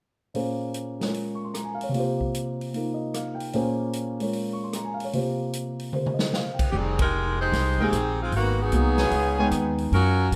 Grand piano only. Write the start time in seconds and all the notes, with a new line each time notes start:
0.34 A#2 A#3 C#4 G#4 C5
1.00 G#3 F4 A#4 C#5
1.35 C#6
1.45 C6
1.54 A#5
1.64 G#5
1.75 F5
1.83 C#5
1.89 C3 A#3
1.95 F4 G4
2.00 C5
2.73 A#3 D#4 F4 A#4
2.94 D#5
3.15 F5
3.35 G5
3.54 A#2 A#3 C#4 G#4 C5
4.20 G#3 F4 A#4 C#5
4.53 C#6
4.64 C6
4.74 A#5
4.85 G#5
4.94 F5
5.04 C#5
5.13 C3 A#3 F4 G4 C5
5.93 C4 G4 A#4 C5
6.14 D#5
6.34 F5
6.54 G5
7.79 G#3 A#3 D#4 G4
8.73 A#3 B3 D#4 F#4
9.38 G#3 B3 D#4 G5